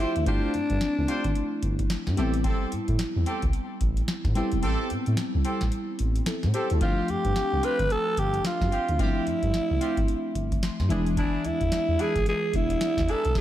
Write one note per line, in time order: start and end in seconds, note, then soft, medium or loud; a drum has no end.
0.00 0.23 F3 medium
0.00 0.22 A3 medium
0.00 0.23 C4 medium
0.00 0.23 D4 medium
0.00 0.27 E4 medium
0.00 0.14 F4 medium
0.00 0.14 G4 medium
0.00 0.14 C5 medium
0.16 0.24 D2 loud
0.16 closed hi-hat medium
0.25 0.39 G1 loud
0.25 2.13 A3 medium
0.25 2.14 C4 medium
0.25 2.14 D4 medium
0.25 1.87 D4 medium
0.25 2.14 E4 medium
0.25 0.52 F4 medium
0.25 0.52 G4 medium
0.25 0.52 C5 loud
0.25 kick loud
0.25 closed hi-hat medium
0.54 0.61 G2 soft
0.54 closed hi-hat medium
0.70 0.79 G2 loud
0.70 kick medium
0.70 closed hi-hat soft
0.81 snare loud
0.81 closed hi-hat medium
0.98 1.06 C2 medium
1.08 1.23 F4 medium
1.08 1.23 G4 medium
1.08 1.23 C5 medium
1.08 closed hi-hat medium
1.24 1.33 G1 medium
1.24 kick medium
1.24 closed hi-hat medium
1.35 closed hi-hat medium
1.63 1.84 G1 medium
1.63 kick medium
1.63 closed hi-hat medium
1.79 kick medium
1.79 closed hi-hat medium
1.90 snare loud
1.90 closed hi-hat medium
2.07 2.15 G2 loud
2.07 snare medium
2.16 2.51 A1 loud
2.16 4.31 G3 medium
2.16 4.32 B3 medium
2.16 2.32 C4 medium
2.16 4.32 C4 medium
2.16 4.32 E4 medium
2.16 2.32 G4 medium
2.16 2.32 A4 medium
2.16 closed hi-hat medium
2.34 closed hi-hat medium
2.44 2.70 C4 medium
2.44 2.70 G4 medium
2.44 2.70 A4 medium
2.44 kick loud
2.44 closed hi-hat medium
2.72 2.79 A2 soft
2.72 closed hi-hat medium
2.88 2.97 A2 loud
2.88 kick medium
2.88 closed hi-hat soft
2.99 snare loud
2.99 closed hi-hat medium
3.16 3.24 E2 medium
3.26 3.41 C4 medium
3.26 3.41 G4 medium
3.26 3.41 A4 medium
3.26 closed hi-hat medium
3.42 3.51 C2 medium
3.42 kick medium
3.42 closed hi-hat medium
3.53 closed hi-hat medium
3.81 4.02 A1 medium
3.81 kick medium
3.81 closed hi-hat medium
3.97 closed hi-hat medium
4.08 snare loud
4.08 closed hi-hat medium
4.25 4.33 A2 loud
4.25 kick loud
4.25 snare medium
4.35 6.49 G3 medium
4.35 6.50 B3 medium
4.35 4.50 C4 medium
4.35 6.50 C4 medium
4.35 6.23 E4 medium
4.35 4.50 G4 medium
4.35 4.51 A4 medium
4.35 closed hi-hat medium
4.52 4.61 E1 medium
4.52 closed hi-hat soft
4.63 4.76 A1 loud
4.63 4.88 C4 medium
4.63 4.88 G4 medium
4.63 4.89 A4 medium
4.63 closed hi-hat medium
4.90 4.97 A2 soft
4.90 closed hi-hat medium
5.06 5.15 A2 loud
5.06 closed hi-hat soft
5.17 snare loud
5.17 closed hi-hat medium
5.35 5.43 C2 medium
5.45 5.59 C4 medium
5.45 5.60 G4 medium
5.45 5.60 A4 medium
5.45 closed hi-hat medium
5.61 5.70 A1 medium
5.61 snare medium
5.61 closed hi-hat medium
5.72 closed hi-hat medium
5.99 6.21 A1 medium
5.99 closed hi-hat medium
6.16 closed hi-hat medium
6.26 6.53 E4 soft
6.26 6.53 A4 medium
6.26 snare loud
6.26 closed hi-hat medium
6.43 6.52 A2 medium
6.43 snare medium
6.54 6.68 C4 medium
6.54 6.69 G4 medium
6.54 6.70 G4 medium
6.54 6.69 A4 medium
6.54 6.70 C5 medium
6.54 closed hi-hat medium
6.70 6.79 D2 medium
6.70 6.97 E4 soft
6.70 6.97 A4 medium
6.70 closed hi-hat medium
6.80 6.94 G1 loud
6.80 8.95 F3 medium
6.80 8.95 A3 medium
6.80 7.07 C4 medium
6.80 8.96 C4 medium
6.80 8.96 D4 medium
6.80 7.07 F4 medium
6.80 7.11 F4 medium
6.80 7.07 G4 medium
6.80 kick loud
6.80 closed hi-hat medium
7.08 7.16 G2 soft
7.08 7.66 G4 medium
7.08 closed hi-hat medium
7.25 7.33 G2 medium
7.25 kick medium
7.25 closed hi-hat soft
7.36 snare medium
7.36 closed hi-hat medium
7.53 7.61 C2 medium
7.63 7.78 C4 medium
7.63 7.78 F4 medium
7.63 7.78 G4 medium
7.63 7.93 B4 loud
7.63 closed hi-hat medium
7.79 7.88 G1 loud
7.79 kick medium
7.79 closed hi-hat medium
7.90 8.20 A4 loud
7.90 closed hi-hat medium
8.17 8.38 G1 medium
8.17 8.46 G4 medium
8.17 kick medium
8.17 closed hi-hat medium
8.34 closed hi-hat medium
8.45 9.02 F4 medium
8.45 snare loud
8.45 closed hi-hat medium
8.61 8.70 G2 loud
8.61 kick medium
8.61 snare medium
8.72 8.87 C4 medium
8.72 8.87 F4 medium
8.72 8.87 G4 medium
8.72 closed hi-hat medium
8.89 8.97 D2 loud
8.89 closed hi-hat soft
8.98 9.12 G1 loud
8.98 10.86 F3 medium
8.98 10.86 A3 medium
8.98 9.25 C4 medium
8.98 10.87 C4 medium
8.98 10.87 D4 medium
8.98 10.64 E4 loud
8.98 9.25 F4 medium
8.98 9.25 G4 medium
8.98 kick loud
8.98 closed hi-hat medium
9.27 9.33 G2 soft
9.27 closed hi-hat medium
9.43 9.51 G2 medium
9.43 kick medium
9.43 closed hi-hat soft
9.54 snare loud
9.54 closed hi-hat medium
9.71 9.79 C2 loud
9.81 9.96 C4 medium
9.81 9.96 F4 medium
9.81 9.96 G4 medium
9.81 closed hi-hat medium
9.97 10.06 G1 medium
9.97 kick medium
9.97 closed hi-hat medium
10.08 closed hi-hat medium
10.35 10.57 G1 medium
10.35 kick medium
10.35 closed hi-hat medium
10.52 kick loud
10.52 closed hi-hat medium
10.63 10.88 C6 medium
10.63 snare loud
10.63 closed hi-hat medium
10.80 10.92 G2 loud
10.80 snare medium
10.89 11.24 E1 loud
10.89 12.50 E3 medium
10.89 12.50 G#3 medium
10.89 12.51 B3 medium
10.89 11.05 D4 medium
10.89 12.51 D4 medium
10.89 11.05 E4 medium
10.89 11.05 G#4 medium
10.89 11.15 E5 medium
10.89 closed hi-hat medium
11.07 closed hi-hat medium
11.17 11.43 D4 medium
11.17 11.48 D4 medium
11.17 11.43 E4 medium
11.17 11.43 G#4 medium
11.17 kick loud
11.17 closed hi-hat medium
11.45 11.52 E2 soft
11.45 12.03 E4 medium
11.45 closed hi-hat medium
11.61 11.70 E2 loud
11.61 kick medium
11.61 closed hi-hat soft
11.72 snare loud
11.72 closed hi-hat medium
11.89 11.97 E2 medium
11.99 12.14 D4 medium
11.99 12.14 E4 medium
11.99 12.14 G#4 medium
11.99 12.28 G#4 loud
11.99 closed hi-hat medium
12.16 12.24 G#1 medium
12.16 kick medium
12.16 closed hi-hat medium
12.26 12.58 G#4 medium
12.26 closed hi-hat medium
12.53 12.75 E1 medium
12.53 13.35 E3 soft
12.53 13.36 G#3 soft
12.53 13.36 B3 soft
12.53 13.36 D4 medium
12.53 13.12 E4 loud
12.53 kick medium
12.53 closed hi-hat medium
12.70 closed hi-hat medium
12.81 snare loud
12.81 closed hi-hat medium
12.97 13.06 E2 loud
12.97 kick loud
12.97 snare medium
13.08 13.23 D4 medium
13.08 13.23 E4 medium
13.08 13.23 G#4 medium
13.08 13.37 A4 loud
13.08 closed hi-hat medium
13.25 13.33 B1 loud
13.25 closed hi-hat medium
13.35 kick loud
13.35 snare medium